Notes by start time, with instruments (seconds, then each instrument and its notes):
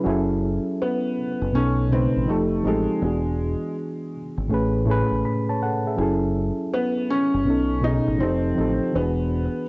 0.04 fingered electric bass F#1, reed electric piano F#3 C#4 E4
0.08 reed electric piano G#4 A4
0.82 felt piano B3
1.42 fingered electric bass F#1
1.52 fingered electric bass B1, reed electric piano B2 B3 C#4, felt piano C#4
1.57 reed electric piano D#4 A4
1.89 reed electric piano B2 C#3 A3, felt piano C4
1.93 reed electric piano D#4 B4
2.16 fingered electric bass A1
2.26 fingered electric bass F1, reed electric piano F3 C4 D#4, felt piano A3
2.30 reed electric piano G4 A4
2.63 fingered electric bass A1, reed electric piano F3 C4 D#4
2.67 felt piano G#3, reed electric piano G4 A4
3.00 fingered electric bass E1, reed electric piano E3 B3 D4
3.04 reed electric piano F#4 G#4
4.37 fingered electric bass G#1
4.48 fingered electric bass A1, reed electric piano A2 A3 C#4
4.52 reed electric piano G#4 B4
4.85 reed electric piano A2 A3 C#4
4.90 reed electric piano G#4 B4
5.11 fingered electric bass A1
5.25 reed electric piano B5
5.49 reed electric piano C#5 A5
5.62 reed electric piano A4 F#5
5.87 reed electric piano G#4 E5
5.97 fingered electric bass F#1, reed electric piano F#3 C#4 E4
6.01 reed electric piano G#4 A4
6.74 felt piano B3
7.10 felt piano C#4
7.34 fingered electric bass F#1
7.44 fingered electric bass B1, reed electric piano B2 B3 C#4
7.49 reed electric piano D#4 A4
7.81 reed electric piano B2 B3 C#4, felt piano D#4
7.86 reed electric piano D#4 G#4
8.08 fingered electric bass A1
8.18 fingered electric bass F1, reed electric piano F3 C4 D#4, felt piano C4
8.23 reed electric piano G4 A4
8.55 fingered electric bass A1, reed electric piano F3 C4 D#4
8.60 reed electric piano G4 A4
8.92 fingered electric bass E1, reed electric piano E3 B3 D4, felt piano B3
8.97 reed electric piano F#4 G#4